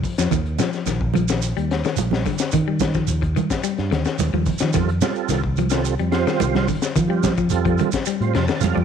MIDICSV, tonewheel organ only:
0, 0, Header, 1, 2, 480
1, 0, Start_track
1, 0, Tempo, 554017
1, 271, Time_signature, 4, 2, 24, 8
1, 7662, End_track
2, 0, Start_track
2, 0, Title_t, "Tonewheel organ"
2, 0, Program_c, 0, 16
2, 4103, Note_on_c, 0, 55, 84
2, 4104, Note_on_c, 0, 60, 77
2, 4106, Note_on_c, 0, 65, 75
2, 4107, Note_on_c, 0, 69, 92
2, 4246, Note_off_c, 0, 55, 0
2, 4247, Note_off_c, 0, 60, 0
2, 4248, Note_off_c, 0, 65, 0
2, 4248, Note_off_c, 0, 69, 0
2, 4350, Note_on_c, 0, 55, 84
2, 4350, Note_on_c, 0, 60, 84
2, 4353, Note_on_c, 0, 65, 72
2, 4357, Note_on_c, 0, 69, 90
2, 4693, Note_off_c, 0, 55, 0
2, 4693, Note_off_c, 0, 60, 0
2, 4694, Note_off_c, 0, 65, 0
2, 4697, Note_off_c, 0, 69, 0
2, 4937, Note_on_c, 0, 55, 75
2, 4939, Note_on_c, 0, 65, 64
2, 4943, Note_on_c, 0, 60, 64
2, 4943, Note_on_c, 0, 69, 74
2, 5150, Note_off_c, 0, 55, 0
2, 5151, Note_off_c, 0, 65, 0
2, 5153, Note_off_c, 0, 60, 0
2, 5153, Note_off_c, 0, 69, 0
2, 5297, Note_on_c, 0, 55, 81
2, 5300, Note_on_c, 0, 65, 71
2, 5300, Note_on_c, 0, 72, 89
2, 5302, Note_on_c, 0, 60, 75
2, 5781, Note_off_c, 0, 55, 0
2, 5783, Note_off_c, 0, 65, 0
2, 5783, Note_off_c, 0, 72, 0
2, 5784, Note_off_c, 0, 60, 0
2, 6129, Note_on_c, 0, 55, 70
2, 6133, Note_on_c, 0, 60, 62
2, 6133, Note_on_c, 0, 65, 60
2, 6136, Note_on_c, 0, 67, 76
2, 6346, Note_off_c, 0, 55, 0
2, 6348, Note_off_c, 0, 60, 0
2, 6348, Note_off_c, 0, 65, 0
2, 6349, Note_off_c, 0, 67, 0
2, 6499, Note_on_c, 0, 60, 58
2, 6500, Note_on_c, 0, 55, 67
2, 6501, Note_on_c, 0, 65, 59
2, 6502, Note_on_c, 0, 69, 77
2, 6847, Note_off_c, 0, 55, 0
2, 6847, Note_off_c, 0, 60, 0
2, 6848, Note_off_c, 0, 65, 0
2, 6848, Note_off_c, 0, 69, 0
2, 7114, Note_on_c, 0, 65, 76
2, 7115, Note_on_c, 0, 55, 84
2, 7115, Note_on_c, 0, 60, 80
2, 7121, Note_on_c, 0, 72, 95
2, 7230, Note_on_c, 0, 81, 63
2, 7318, Note_off_c, 0, 55, 0
2, 7318, Note_off_c, 0, 60, 0
2, 7318, Note_off_c, 0, 65, 0
2, 7321, Note_off_c, 0, 72, 0
2, 7455, Note_off_c, 0, 81, 0
2, 7456, Note_on_c, 0, 55, 68
2, 7458, Note_on_c, 0, 60, 66
2, 7460, Note_on_c, 0, 65, 70
2, 7461, Note_on_c, 0, 77, 65
2, 7463, Note_on_c, 0, 69, 88
2, 7577, Note_on_c, 0, 74, 64
2, 7579, Note_off_c, 0, 77, 0
2, 7662, Note_off_c, 0, 55, 0
2, 7662, Note_off_c, 0, 60, 0
2, 7662, Note_off_c, 0, 65, 0
2, 7662, Note_off_c, 0, 69, 0
2, 7662, Note_off_c, 0, 74, 0
2, 7662, End_track
0, 0, End_of_file